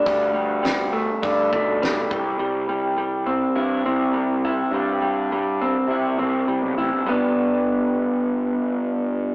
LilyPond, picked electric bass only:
\new Staff \with { instrumentName = "Picked electric bass" } { \clef bass \time 4/4 \key g \major \tempo 4 = 103 d,2 g,8 b,,4 c,8 | c,2 g,8 c,4. | g,2 c8 c,8 c,16 b,,16 a,,16 g,,16 | g,,1 | }